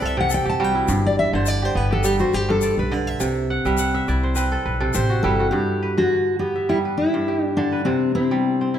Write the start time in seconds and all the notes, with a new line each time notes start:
Already playing: C3 G3 C4 E4 B4 C5 D5
0.01 C2 A4, shaker
0.05 E5
0.17 C3 G4 F#5
0.30 A4, shaker
0.34 G5
0.45 C2 G4
0.49 A5
0.60 G3 F#4
0.64 G5
0.75 E4
0.88 G1 G2, shaker
1.06 D5
1.19 E5
1.32 G1 D3 C5
1.46 D5, shaker
1.62 G4 C5
1.75 G1 B3 B4
1.91 G4 A4
2.04 G3 G4, shaker
2.19 F#4 C5, shaker
2.33 G1 G4, shaker
2.49 G2 A4
2.61 D5, shaker
2.77 B1 B4
2.91 D3 D5
3.07 E5
3.20 C2 C3, shaker
3.50 F#5
3.65 C2 G3 E5, shaker
3.78 F#5, shaker
3.94 E5
4.08 C2 E4 D5, shaker
4.23 C5
4.36 C4 B4, shaker
4.52 A4
4.65 B1 B4
4.80 C3 A4
4.94 A1 G4 C5, shaker
5.10 F#4
5.23 G1 G3 E4 A4
5.40 F#4
5.51 G2 G4
5.83 B4
5.98 D3 F#4
6.39 B3 G4
6.56 E5
6.69 G3 E4
6.85 B4
6.97 E4
7.14 G2
7.28 G4
7.44 D4
7.57 D3 D4
7.72 B4
7.85 C3 C4
8.15 C4 E4
8.31 G3
8.61 C4
8.74 E4